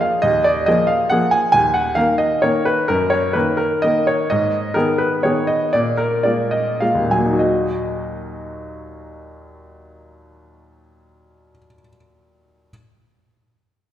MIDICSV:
0, 0, Header, 1, 2, 480
1, 0, Start_track
1, 0, Key_signature, -6, "minor"
1, 0, Tempo, 433526
1, 251, Time_signature, 3, 2, 24, 8
1, 2171, Tempo, 467290
1, 5531, Tempo, 508044
1, 6491, Tempo, 576369
1, 7451, Tempo, 532387
1, 10331, Tempo, 508044
1, 13472, End_track
2, 0, Start_track
2, 0, Title_t, "Grand piano"
2, 0, Program_c, 0, 0
2, 0, Note_on_c, 0, 53, 30
2, 0, Note_on_c, 0, 58, 32
2, 0, Note_on_c, 0, 68, 36
2, 8, Note_on_c, 0, 77, 57
2, 210, Note_off_c, 0, 58, 0
2, 212, Note_off_c, 0, 53, 0
2, 213, Note_off_c, 0, 68, 0
2, 243, Note_on_c, 0, 75, 72
2, 250, Note_off_c, 0, 77, 0
2, 258, Note_on_c, 0, 39, 42
2, 440, Control_c, 0, 64, 127
2, 488, Note_off_c, 0, 75, 0
2, 492, Note_on_c, 0, 74, 65
2, 724, Note_off_c, 0, 39, 0
2, 734, Note_on_c, 0, 75, 67
2, 735, Note_off_c, 0, 74, 0
2, 747, Note_on_c, 0, 53, 33
2, 750, Control_c, 0, 64, 0
2, 750, Note_on_c, 0, 58, 34
2, 756, Note_on_c, 0, 68, 38
2, 963, Note_on_c, 0, 77, 60
2, 975, Note_off_c, 0, 75, 0
2, 1179, Note_off_c, 0, 53, 0
2, 1181, Note_off_c, 0, 58, 0
2, 1184, Note_off_c, 0, 68, 0
2, 1211, Note_off_c, 0, 77, 0
2, 1213, Note_on_c, 0, 78, 66
2, 1229, Note_on_c, 0, 53, 32
2, 1234, Note_on_c, 0, 58, 34
2, 1241, Note_on_c, 0, 68, 35
2, 1453, Note_on_c, 0, 80, 66
2, 1455, Note_off_c, 0, 78, 0
2, 1651, Note_off_c, 0, 53, 0
2, 1654, Note_off_c, 0, 58, 0
2, 1657, Note_off_c, 0, 68, 0
2, 1668, Note_off_c, 0, 80, 0
2, 1684, Note_on_c, 0, 80, 82
2, 1704, Note_on_c, 0, 39, 43
2, 1916, Control_c, 0, 64, 127
2, 1922, Note_off_c, 0, 80, 0
2, 1923, Note_on_c, 0, 78, 54
2, 2160, Note_on_c, 0, 77, 69
2, 2164, Note_off_c, 0, 39, 0
2, 2170, Note_off_c, 0, 78, 0
2, 2175, Note_on_c, 0, 51, 34
2, 2182, Control_c, 0, 64, 0
2, 2184, Note_on_c, 0, 58, 32
2, 2188, Note_on_c, 0, 70, 36
2, 2397, Note_on_c, 0, 75, 63
2, 2402, Note_off_c, 0, 77, 0
2, 2611, Note_off_c, 0, 51, 0
2, 2615, Note_off_c, 0, 58, 0
2, 2617, Note_off_c, 0, 70, 0
2, 2642, Note_on_c, 0, 73, 60
2, 2645, Note_off_c, 0, 75, 0
2, 2658, Note_on_c, 0, 51, 30
2, 2659, Note_on_c, 0, 58, 33
2, 2660, Note_on_c, 0, 70, 35
2, 2883, Note_on_c, 0, 71, 58
2, 2887, Note_off_c, 0, 73, 0
2, 3088, Note_off_c, 0, 51, 0
2, 3089, Note_off_c, 0, 58, 0
2, 3090, Note_off_c, 0, 70, 0
2, 3117, Note_on_c, 0, 70, 67
2, 3121, Note_off_c, 0, 71, 0
2, 3133, Note_on_c, 0, 42, 44
2, 3340, Note_on_c, 0, 73, 62
2, 3345, Control_c, 0, 64, 127
2, 3353, Note_off_c, 0, 70, 0
2, 3580, Note_on_c, 0, 71, 55
2, 3586, Note_off_c, 0, 42, 0
2, 3588, Note_off_c, 0, 73, 0
2, 3601, Note_on_c, 0, 51, 34
2, 3603, Note_on_c, 0, 58, 33
2, 3609, Note_on_c, 0, 70, 37
2, 3610, Control_c, 0, 64, 0
2, 3810, Note_off_c, 0, 70, 0
2, 3825, Note_on_c, 0, 70, 57
2, 3833, Note_off_c, 0, 71, 0
2, 4051, Note_off_c, 0, 51, 0
2, 4052, Note_off_c, 0, 58, 0
2, 4081, Note_off_c, 0, 70, 0
2, 4081, Note_on_c, 0, 75, 66
2, 4098, Note_on_c, 0, 51, 31
2, 4102, Note_on_c, 0, 58, 31
2, 4109, Note_on_c, 0, 70, 36
2, 4331, Note_off_c, 0, 75, 0
2, 4337, Note_on_c, 0, 73, 57
2, 4532, Note_off_c, 0, 51, 0
2, 4534, Note_off_c, 0, 58, 0
2, 4538, Note_off_c, 0, 70, 0
2, 4570, Note_off_c, 0, 73, 0
2, 4573, Note_on_c, 0, 75, 66
2, 4584, Note_on_c, 0, 44, 44
2, 4758, Control_c, 0, 64, 127
2, 5028, Note_off_c, 0, 44, 0
2, 5028, Note_on_c, 0, 70, 62
2, 5036, Note_off_c, 0, 75, 0
2, 5046, Note_on_c, 0, 51, 32
2, 5049, Control_c, 0, 64, 0
2, 5049, Note_on_c, 0, 68, 35
2, 5052, Note_on_c, 0, 59, 32
2, 5275, Note_off_c, 0, 70, 0
2, 5275, Note_on_c, 0, 71, 48
2, 5496, Note_off_c, 0, 51, 0
2, 5497, Note_off_c, 0, 68, 0
2, 5499, Note_off_c, 0, 59, 0
2, 5530, Note_off_c, 0, 71, 0
2, 5530, Note_on_c, 0, 73, 56
2, 5543, Note_on_c, 0, 51, 29
2, 5545, Note_on_c, 0, 59, 29
2, 5552, Note_on_c, 0, 68, 33
2, 5759, Note_on_c, 0, 75, 57
2, 5768, Note_off_c, 0, 73, 0
2, 5971, Note_off_c, 0, 51, 0
2, 5972, Note_off_c, 0, 59, 0
2, 5976, Note_off_c, 0, 68, 0
2, 5998, Note_off_c, 0, 75, 0
2, 6000, Note_on_c, 0, 74, 59
2, 6010, Note_on_c, 0, 46, 42
2, 6196, Control_c, 0, 64, 127
2, 6233, Note_on_c, 0, 70, 53
2, 6240, Note_off_c, 0, 74, 0
2, 6478, Note_on_c, 0, 74, 51
2, 6480, Note_off_c, 0, 46, 0
2, 6487, Note_off_c, 0, 70, 0
2, 6493, Note_on_c, 0, 56, 28
2, 6495, Note_on_c, 0, 58, 29
2, 6497, Note_on_c, 0, 65, 31
2, 6710, Note_on_c, 0, 75, 51
2, 6716, Note_off_c, 0, 74, 0
2, 6932, Note_off_c, 0, 56, 0
2, 6933, Note_off_c, 0, 58, 0
2, 6934, Note_off_c, 0, 65, 0
2, 6955, Note_on_c, 0, 77, 55
2, 6958, Note_off_c, 0, 75, 0
2, 6967, Note_on_c, 0, 56, 26
2, 6972, Note_on_c, 0, 58, 26
2, 6976, Note_on_c, 0, 65, 28
2, 6979, Control_c, 0, 64, 0
2, 7075, Note_on_c, 0, 39, 36
2, 7137, Note_on_c, 0, 46, 28
2, 7199, Note_on_c, 0, 54, 29
2, 7209, Note_on_c, 0, 80, 47
2, 7213, Note_off_c, 0, 77, 0
2, 7255, Note_off_c, 0, 58, 0
2, 7268, Note_on_c, 0, 58, 28
2, 7327, Note_on_c, 0, 63, 29
2, 7392, Note_on_c, 0, 66, 29
2, 7419, Note_off_c, 0, 56, 0
2, 7424, Note_off_c, 0, 65, 0
2, 7444, Note_on_c, 0, 75, 38
2, 7447, Note_off_c, 0, 80, 0
2, 7678, Control_c, 0, 64, 127
2, 11192, Note_off_c, 0, 39, 0
2, 11261, Note_off_c, 0, 46, 0
2, 11332, Note_off_c, 0, 54, 0
2, 11410, Note_off_c, 0, 58, 0
2, 11478, Note_off_c, 0, 63, 0
2, 11551, Note_off_c, 0, 66, 0
2, 11610, Note_off_c, 0, 75, 0
2, 12318, Control_c, 0, 64, 0
2, 13472, End_track
0, 0, End_of_file